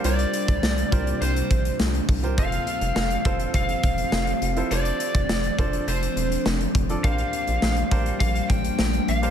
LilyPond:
<<
  \new Staff \with { instrumentName = "Lead electric guitar" } { \time 4/4 \key f \major \tempo 4 = 103 d''2 c''4 r4 | f''2 f''2 | d''2 c''4 r4 | f''2 f''8 g''4 f''8 | }
  \new Staff \with { instrumentName = "Grand piano" } { \time 4/4 \key f \major <f' g' bes' c''>4~ <f' g' bes' c''>16 r16 <f' g' bes' c''>4.~ <f' g' bes' c''>16 r8 <f' g' bes' c''>16 | <c' f' a' c''>4~ <c' f' a' c''>16 r16 <c' f' a' c''>4.~ <c' f' a' c''>16 r8 <e' f' a' c''>16 | <d' f' a' c''>4~ <d' f' a' c''>16 r16 <d' f' a' c''>4.~ <d' f' a' c''>16 r8 <d' f' a' d''>16 | <d' g' bes' c''>4~ <d' g' bes' c''>16 r16 <d' g' bes' c''>4.~ <d' g' bes' c''>16 r8 <d' g' bes' c''>16 | }
  \new Staff \with { instrumentName = "Ambient pad" } { \time 4/4 \key f \major << { <c g bes d' f'>1 | <f f' g' a'>1 | <f d'>1 | <g bes d'>1 | } \\ { r1 | c'1~ | c'1 | r1 | } >> }
  \new Staff \with { instrumentName = "Overdriven electric guitar" } { \time 4/4 \key f \major <c g c'>8 <g c'>4. <c g c'>2 | <f c' f'>8 <c' f'>4. <f c' f'>2 | <d a d'>8 <a d'>4. <d a d'>2 | <bes, f bes>8 <f bes>4. <bes, f bes>2 | }
  \new Staff \with { instrumentName = "Analog synth bass" } { \clef bass \time 4/4 \key f \major c,8 r16 c,16 c,8 c,8 c,8 bes,,8 c,8 c,8 | f,,8 r16 f,,16 f,,8 f,,8 f,,8 e,,8 f,,8 f,,8 | f,,8 r16 f,,16 f,,8 f,,8 f,,8 e,,8 f,,8 f,,8 | bes,,8 r16 bes,,16 bes,,8 bes,,8 bes,,8 a,,8 bes,,8 bes,,8 | }
  \new DrumStaff \with { instrumentName = "Drums" } \drummode { \time 4/4 hh16 hh16 hh16 <hh bd>16 <sn tamb>16 hh16 <hh bd>16 hh16 hh16 hh16 <hh bd>16 hh16 <sn tamb>16 hh16 <hho bd>16 hh16 | <hh bd>16 hh16 hh16 hh16 <sn tamb>16 hh16 <hh bd>16 hh16 <hh bd>16 hh16 <hh bd>16 hh16 <sn tamb>16 hh16 hh16 hh16 | hh16 hh16 hh16 <hh bd>16 <sn tamb>16 hh16 <hh bd>16 hh16 hh16 hh16 hh16 hh16 <sn tamb>16 hh16 <hh bd>16 hh16 | <hh bd>16 hh16 hh16 hh16 <sn tamb>16 hh16 <hh bd>16 hh16 <hh bd>16 hh16 <hh bd>16 hh16 <sn tamb>16 hh16 hh16 hh16 | }
>>